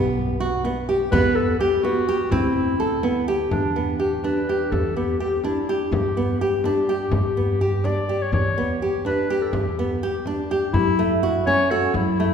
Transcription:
Already playing: B1 B3
0.40 F#4
0.65 B3, frame drum
0.89 G4
1.12 E2 B3 B4, frame drum
1.35 A4
1.59 G4
1.83 B3 F#4, frame drum
2.09 G4
2.31 D2 C4 E4, frame drum
2.80 A4
3.03 B3, frame drum
3.28 G4
3.51 E2 D4, frame drum
3.76 B3
4.00 G4
4.23 D4 B4, frame drum
4.48 G4, frame drum
4.71 E2 A4, frame drum
4.96 B3 G4
5.20 G4
5.44 D4 E4, frame drum
5.68 G4, frame drum
5.92 G2 G4, frame drum
6.17 B3
6.41 G4
6.64 D4 G4, frame drum
6.88 G4, frame drum
7.12 G2 G4, frame drum
7.37 B3, frame drum
7.61 G4, frame drum
7.84 D4 D5, frame drum
8.09 G4
8.22 C#5
8.32 E2 C#5, frame drum
8.58 B3
8.82 G4
9.05 D4 B4, frame drum
9.29 G4, frame drum
9.41 A4
9.53 E2 G4, frame drum
9.79 B3
10.03 G4
10.26 D4, frame drum
10.49 G4, frame drum
10.73 F#2 E4, frame drum
10.99 A3
11.23 F#4
11.47 C#4 C#5, frame drum
11.70 F#4 A4, frame drum
11.94 F#2 E4, frame drum
12.20 A3

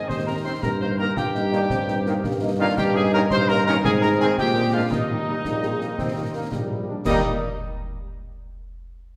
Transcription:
Already playing: C4
0.08 D#2 D#4 C5 C6, concert bass drum, snare
0.26 C4 D#4 A#4 A#5
0.44 D#3 C4 D#4 C5 C6
0.62 G2 G4 A#4 A#5, concert bass drum, snare
0.80 A#3 D#4 C5 C6
0.98 D#3 A#3 D#4 A#4 A#5
1.16 G2 F4 G4 G5, concert bass drum, snare
1.34 A#3 D#4, snare
1.51 D#3 A#3 D4 D#4, snare
1.70 G2 C4, concert bass drum, snare
1.88 A#3 D#4, snare
2.05 D#3 A#3 D#4, snare
2.24 G2 A#3, concert bass drum, snare
2.41 A#3 D#4
2.59 D#3 A#3 D4 D#4 F4 F5
2.77 G2 D#4 G4 G5, concert bass drum, snare, crash
2.95 A#3 C#4 D#4 G#4 G#5
3.13 D#3 A#3 C#4 D#4 A#4 A#5
3.30 G2 C5 C6, concert bass drum, snare
3.48 A#3 C#4 D#4 A#4 A#5, snare
3.66 D#3 A#3 C#4 D#4 A#4 A#5, snare
3.84 G#2 C4 G#4 G#5, concert bass drum, snare
4.02 G#3 C4 D#4 A#4 A#5, snare
4.20 D#3 G#3 C4 D#4 G#4 G#5, snare
4.38 A#2 G4 G5, concert bass drum, snare
4.55 G#3 A#3 D4
4.73 G#3 A#3 D4 F4 F5
4.91 D#2 A#3 D#4 D#5, concert bass drum, snare
5.09 G3 A#3 D#4
5.26 G3 A#3 D#4
5.45 A#1 G3, concert bass drum, snare
5.62 G3 G#3 A#3 D#4, snare
5.80 G3 A#3 D#4, snare
5.99 D#2 C4, concert bass drum, snare
6.15 G3 A#3 D#4
6.34 G3 A#3 D#4
6.52 A#1 G3, concert bass drum, snare
6.70 G3 A#3 D#4
6.87 G3 A#3 D4 D#4
7.05 D#2 G3 A#3 D#4 D#5 D#6, concert bass drum, snare, crash

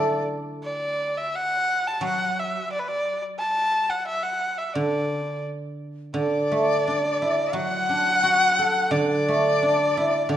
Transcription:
Already playing: D3 A3 D4 E4 A4 D5
0.64 D5
1.18 E5
1.35 F#5
1.87 A5
2.01 F#3 F#5
2.40 E5
2.72 D5
2.79 B4
2.88 D5
3.39 A5
3.90 F#5
4.07 E5
4.23 F#5
4.58 E5
4.74 D3 D5
6.14 D3 D5
6.52 A3
6.88 D4
7.22 E4
7.53 F#3 F#5
7.89 D4
8.23 F#4
8.59 A4
8.91 D3 D5
9.28 A3
9.63 D4
9.97 E4
10.29 D3 D5

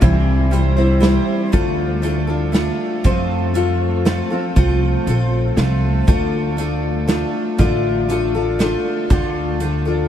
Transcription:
0.01 C2 C3 E3 G3 C4 E4 C5, kick, closed hi-hat
0.51 G3 C4 E4 C5, closed hi-hat
0.77 G3 C4 E4 C5
1.00 G3 C4 E4 C5, snare, closed hi-hat
1.52 D2 D3 A3 D4 F4 A4, kick, closed hi-hat
2.02 A3 D4 F4 A4, closed hi-hat
2.27 D4 F4 A4
2.52 A3 D4 F4 A4, snare, closed hi-hat
3.04 F2 F3 A3 C4 F4 A4, kick, closed hi-hat
3.54 A3 C4 F4 A4, closed hi-hat
4.05 A3 C4 F4 A4, snare, closed hi-hat
4.30 C4 F4 A4
4.56 C2 F3 A3 C4 F4 A4, kick, closed hi-hat
5.07 A#1 A3 C4 F4 A4, closed hi-hat
5.57 C2 A3 C4 F4 A4, snare, closed hi-hat
6.07 D2 D3 A3 D4 F4 A4, kick, closed hi-hat
6.57 A3 D4 F4 A4, closed hi-hat
7.07 A3 D4 F4 A4, snare, closed hi-hat
7.58 A1 D3 A3 D4 F4 A4, kick, closed hi-hat
8.09 A3 D4 F4 A4, closed hi-hat
8.35 D4 F4 A4
8.59 A3 D4 F4 A4, snare, closed hi-hat
9.10 D2 D3 A3 D4 F4 A4, kick, closed hi-hat
9.60 A3 D4 F4 A4, closed hi-hat
9.85 D4 F4 A4

